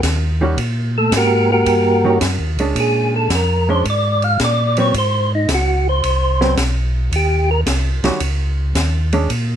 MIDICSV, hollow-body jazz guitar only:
0, 0, Header, 1, 2, 480
1, 0, Start_track
1, 0, Tempo, 544959
1, 507, Time_signature, 4, 2, 24, 8
1, 8421, End_track
2, 0, Start_track
2, 0, Title_t, "Hollow-body jazz guitar"
2, 0, Program_c, 0, 26
2, 362, Note_on_c, 0, 51, 70
2, 366, Note_on_c, 0, 55, 75
2, 370, Note_on_c, 0, 61, 72
2, 376, Note_on_c, 0, 66, 79
2, 496, Note_off_c, 0, 51, 0
2, 498, Note_off_c, 0, 55, 0
2, 500, Note_off_c, 0, 61, 0
2, 503, Note_off_c, 0, 66, 0
2, 1802, Note_on_c, 0, 51, 62
2, 1802, Note_on_c, 0, 55, 57
2, 1809, Note_on_c, 0, 61, 69
2, 1813, Note_on_c, 0, 66, 66
2, 1937, Note_off_c, 0, 51, 0
2, 1937, Note_off_c, 0, 55, 0
2, 1941, Note_off_c, 0, 61, 0
2, 1943, Note_off_c, 0, 66, 0
2, 2288, Note_on_c, 0, 56, 62
2, 2291, Note_on_c, 0, 61, 66
2, 2297, Note_on_c, 0, 62, 68
2, 2886, Note_off_c, 0, 56, 0
2, 2887, Note_off_c, 0, 61, 0
2, 2890, Note_off_c, 0, 62, 0
2, 3248, Note_on_c, 0, 56, 61
2, 3255, Note_on_c, 0, 61, 74
2, 3260, Note_on_c, 0, 62, 72
2, 3381, Note_off_c, 0, 56, 0
2, 3384, Note_off_c, 0, 61, 0
2, 3387, Note_off_c, 0, 62, 0
2, 4208, Note_on_c, 0, 54, 61
2, 4211, Note_on_c, 0, 59, 63
2, 4218, Note_on_c, 0, 60, 72
2, 4341, Note_off_c, 0, 54, 0
2, 4343, Note_off_c, 0, 59, 0
2, 4346, Note_off_c, 0, 60, 0
2, 5646, Note_on_c, 0, 54, 64
2, 5648, Note_on_c, 0, 59, 62
2, 5656, Note_on_c, 0, 60, 73
2, 5779, Note_off_c, 0, 54, 0
2, 5781, Note_off_c, 0, 59, 0
2, 5785, Note_off_c, 0, 60, 0
2, 7081, Note_on_c, 0, 51, 73
2, 7085, Note_on_c, 0, 55, 69
2, 7091, Note_on_c, 0, 61, 74
2, 7092, Note_on_c, 0, 66, 79
2, 7216, Note_off_c, 0, 51, 0
2, 7218, Note_off_c, 0, 55, 0
2, 7221, Note_off_c, 0, 61, 0
2, 7222, Note_off_c, 0, 66, 0
2, 8043, Note_on_c, 0, 56, 73
2, 8047, Note_on_c, 0, 61, 78
2, 8051, Note_on_c, 0, 62, 79
2, 8176, Note_off_c, 0, 56, 0
2, 8178, Note_off_c, 0, 61, 0
2, 8180, Note_off_c, 0, 62, 0
2, 8421, End_track
0, 0, End_of_file